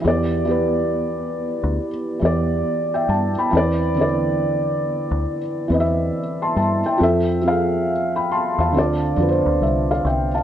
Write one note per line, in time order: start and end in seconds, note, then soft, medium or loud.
0.01 1.59 E2 loud
0.01 0.40 E3 medium
0.01 0.41 B3 medium
0.01 0.42 G4 medium
0.08 0.43 D5 loud
0.45 1.87 E3 medium
0.45 1.88 B3 medium
0.45 1.89 G4 medium
0.51 1.90 B4 medium
1.64 1.78 D2 medium
2.19 2.62 E2 medium
2.19 3.30 E3 medium
2.19 3.31 B3 medium
2.19 3.31 G4 medium
2.25 3.32 D5 medium
2.94 3.09 E5 medium
2.94 3.09 G5 medium
3.09 3.35 G2 medium
3.09 3.36 A5 medium
3.38 3.80 G5 medium
3.38 3.79 B5 medium
3.51 5.07 E2 loud
3.51 3.89 E3 medium
3.51 3.90 C4 medium
3.55 3.91 B4 medium
3.55 3.92 D5 loud
3.95 4.04 D3 medium
3.95 5.37 C4 medium
3.95 5.38 B4 medium
4.01 5.40 E3 medium
4.01 5.39 D5 medium
5.11 5.25 D2 medium
5.68 6.10 E2 medium
5.68 6.78 E3 medium
5.68 6.79 C4 medium
5.68 6.80 B4 medium
5.74 5.81 D#5 medium
5.80 6.19 E5 medium
6.42 6.55 A5 medium
6.42 6.56 C6 medium
6.56 6.83 G2 medium
6.56 6.84 A5 medium
6.86 7.02 E5 medium
6.86 7.27 G5 medium
6.98 8.55 F2 loud
6.98 7.36 F3 medium
6.98 7.37 C4 medium
6.98 7.38 A4 medium
7.03 7.39 E5 loud
7.42 8.73 F3 medium
7.42 8.73 C4 medium
7.42 7.53 G#4 medium
7.48 7.89 F5 medium
7.52 8.78 A4 medium
8.16 8.30 G5 soft
8.16 8.30 B5 medium
8.32 8.58 A5 medium
8.32 8.58 C6 medium
8.59 8.74 E2 medium
8.59 9.01 F5 medium
8.59 9.01 A5 medium
8.72 9.14 D2 loud
8.72 9.11 D3 medium
8.72 9.12 C4 medium
8.76 9.13 F4 medium
8.76 9.14 D5 medium
9.16 9.44 F2 medium
9.16 10.26 D3 medium
9.16 10.27 C4 medium
9.16 10.28 F4 medium
9.22 9.28 B4 medium
9.29 9.62 C5 medium
9.46 9.60 D2 medium
9.61 10.01 C2 medium
9.61 9.89 C5 medium
9.61 9.89 E5 medium
9.91 10.05 D5 medium
9.91 10.05 F5 medium
10.05 10.43 C2 medium
10.05 10.33 E5 medium
10.05 10.32 G5 medium
10.35 10.43 F5 soft
10.35 10.43 A5 medium